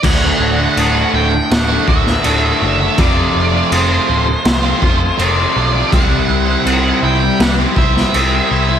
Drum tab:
CC |x---x---x---x---|x---x---x---x---|x---x---x---x---|
SD |--------o--o----|--------o-------|--------o--o----|
BD |o---------o-----|o---------o-----|o---------o-----|